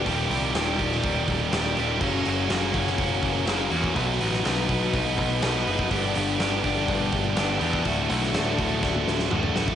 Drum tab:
CC |----------------|x---------------|----------------|----------------|
HH |o-o-o-o-o-o-o-o-|--o-o-o-o-o-o-o-|o-o-o-o-o-o-o-o-|o-o-o-o-o-o-o-o-|
SD |----o--o----o---|----o--o----o---|---oo-------o---|----o-------o---|
T1 |----------------|----------------|----------------|----------------|
T2 |----------------|----------------|----------------|----------------|
BD |o-----o-o-o-----|o-----o-o-o----o|o-----o-o-o----o|o-----o-o-o----o|

CC |----------------|
HH |o-o-o-o---------|
SD |---oo---o-oo--o-|
T1 |---------o------|
T2 |------------oo--|
BD |o-----o-o------o|